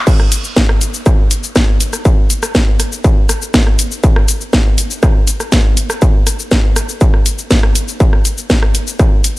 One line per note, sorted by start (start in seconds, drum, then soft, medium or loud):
0.07 kick loud
0.07 crash medium
0.07 shaker soft
0.20 cross-stick medium
0.32 closed hi-hat loud
0.32 shaker medium
0.44 shaker soft
0.57 kick loud
0.57 snare loud
0.57 shaker soft
0.69 cross-stick medium
0.81 closed hi-hat loud
0.81 shaker medium
0.94 shaker soft
1.06 kick loud
1.06 cross-stick medium
1.06 shaker soft
1.31 closed hi-hat loud
1.31 shaker medium
1.44 shaker soft
1.56 kick loud
1.56 cross-stick medium
1.56 snare loud
1.56 shaker soft
1.80 closed hi-hat loud
1.80 shaker medium
1.93 cross-stick medium
1.93 shaker soft
2.05 kick loud
2.05 shaker soft
2.30 closed hi-hat loud
2.30 shaker medium
2.43 cross-stick medium
2.43 shaker soft
2.55 kick loud
2.55 snare loud
2.55 shaker soft
2.80 cross-stick medium
2.80 closed hi-hat loud
2.80 shaker medium
2.92 shaker soft
3.04 kick loud
3.04 shaker soft
3.29 cross-stick medium
3.29 closed hi-hat loud
3.29 shaker medium
3.42 shaker soft
3.54 kick loud
3.54 snare loud
3.54 shaker soft
3.67 cross-stick medium
3.79 closed hi-hat loud
3.79 shaker medium
3.92 shaker soft
4.04 kick loud
4.04 shaker soft
4.16 cross-stick medium
4.28 closed hi-hat loud
4.28 shaker medium
4.41 shaker soft
4.53 kick loud
4.53 cross-stick medium
4.53 snare loud
4.53 shaker soft
4.78 closed hi-hat loud
4.78 shaker medium
4.91 shaker soft
5.03 kick loud
5.03 cross-stick medium
5.03 shaker soft
5.27 closed hi-hat loud
5.27 shaker medium
5.40 cross-stick medium
5.40 shaker soft
5.52 kick loud
5.52 snare loud
5.52 shaker soft
5.77 closed hi-hat loud
5.77 shaker medium
5.90 cross-stick medium
5.90 shaker soft
6.02 kick loud
6.02 shaker soft
6.27 cross-stick medium
6.27 closed hi-hat loud
6.27 shaker medium
6.39 shaker soft
6.51 kick loud
6.51 snare loud
6.51 shaker soft
6.76 cross-stick medium
6.76 closed hi-hat loud
6.76 shaker medium
6.89 shaker soft
7.01 kick loud
7.01 shaker soft
7.14 cross-stick medium
7.26 closed hi-hat loud
7.26 shaker medium
7.38 shaker soft
7.51 kick loud
7.51 snare loud
7.51 shaker soft
7.63 cross-stick medium
7.75 closed hi-hat loud
7.75 shaker medium
7.88 shaker soft
8.00 kick loud
8.00 shaker soft
8.13 cross-stick medium
8.25 closed hi-hat loud
8.25 shaker medium
8.38 shaker soft
8.50 kick loud
8.50 snare loud
8.50 shaker soft
8.63 cross-stick medium
8.75 closed hi-hat loud
8.75 shaker medium
8.87 shaker soft
8.99 kick loud
8.99 cross-stick medium
8.99 shaker soft
9.24 closed hi-hat loud
9.24 shaker medium